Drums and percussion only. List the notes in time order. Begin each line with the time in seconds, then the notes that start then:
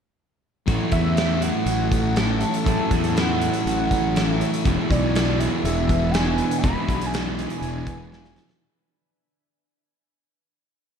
0.68 kick, closed hi-hat
0.92 kick, closed hi-hat
1.17 snare, closed hi-hat
1.42 closed hi-hat
1.66 closed hi-hat
1.92 kick, closed hi-hat
2.16 snare, closed hi-hat
2.41 closed hi-hat
2.54 closed hi-hat
2.66 kick, closed hi-hat
2.91 kick, closed hi-hat
3.04 closed hi-hat
3.17 snare, closed hi-hat
3.42 closed hi-hat
3.54 closed hi-hat
3.67 closed hi-hat
3.91 kick, snare, closed hi-hat
4.16 snare, closed hi-hat
4.41 closed hi-hat
4.54 closed hi-hat
4.65 kick, closed hi-hat
4.91 kick, closed hi-hat
5.15 snare, closed hi-hat
5.40 closed hi-hat
5.65 closed hi-hat
5.89 kick, closed hi-hat
6.14 snare, closed hi-hat
6.38 closed hi-hat
6.51 closed hi-hat
6.64 kick, closed hi-hat
6.88 kick, closed hi-hat
7.01 closed hi-hat
7.14 snare, closed hi-hat
7.39 closed hi-hat
7.50 closed hi-hat
7.63 closed hi-hat
7.87 kick, closed hi-hat
8.12 snare
8.24 snare
8.36 snare
8.49 snare